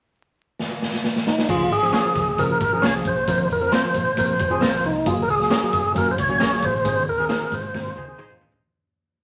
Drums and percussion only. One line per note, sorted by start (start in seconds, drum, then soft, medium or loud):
0.59 snare medium
0.82 snare medium
0.93 snare medium
1.04 snare medium
1.16 snare medium
1.27 snare medium
1.38 snare medium
1.49 kick loud
1.49 crash medium
1.72 closed hi-hat medium
1.83 snare soft
1.93 snare loud
1.93 closed hi-hat medium
2.16 kick medium
2.16 snare soft
2.16 closed hi-hat medium
2.38 kick medium
2.38 closed hi-hat medium
2.60 kick medium
2.60 closed hi-hat medium
2.83 snare loud
2.83 closed hi-hat medium
3.05 kick medium
3.05 closed hi-hat medium
3.28 kick loud
3.28 closed hi-hat loud
3.50 closed hi-hat medium
3.72 snare loud
3.72 closed hi-hat medium
3.94 kick medium
3.94 closed hi-hat medium
4.17 kick medium
4.17 closed hi-hat medium
4.39 kick medium
4.39 closed hi-hat medium
4.62 snare loud
4.62 closed hi-hat medium
4.84 closed hi-hat medium
5.06 kick loud
5.06 closed hi-hat loud
5.29 closed hi-hat medium
5.40 snare soft
5.50 snare loud
5.50 closed hi-hat medium
5.73 kick medium
5.73 closed hi-hat medium
5.96 kick medium
5.96 closed hi-hat medium
6.18 kick medium
6.18 closed hi-hat medium
6.41 snare loud
6.41 closed hi-hat loud
6.63 kick medium
6.63 closed hi-hat medium
6.85 kick loud
6.85 closed hi-hat medium
7.08 closed hi-hat medium
7.29 snare loud
7.29 closed hi-hat medium
7.52 kick medium
7.52 snare soft
7.52 closed hi-hat medium
7.75 kick medium
7.75 snare medium
7.97 high tom medium
8.19 mid tom medium
8.30 mid tom medium
8.41 floor tom medium
8.52 floor tom medium